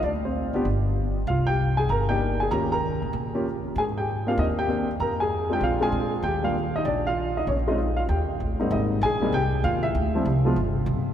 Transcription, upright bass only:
X:1
M:4/4
L:1/8
Q:"Swing" 1/4=194
K:Eb
V:1 name="Upright bass" clef=bass
D,,3 A,,, G,,,4 | C,,4 G,,,4 | E,,3 B,, B,,3 z | A,,4 E,,4 |
F,,4 B,,,2 B,,2 | E,,4 B,,,4 | B,,,4 E,,2 =A,,,2 | [K:Ab] A,,,2 B,,,2 C,,2 E,,2 |
=D,,2 C,,2 G,,,2 =B,,, z |]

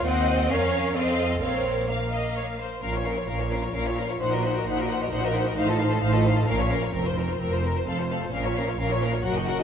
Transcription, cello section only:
X:1
M:3/4
L:1/8
Q:1/4=131
K:Bbm
V:1 name="Cello section" clef=bass
C2 D2 C2 | C2 B,3 z | B,,2 B,,2 B,,2 | B,,2 B,,2 B,,2 |
=A,,2 A,,2 B,,2 | F,,2 F,,2 F,,2 | B,,2 B,,2 G,,2 |]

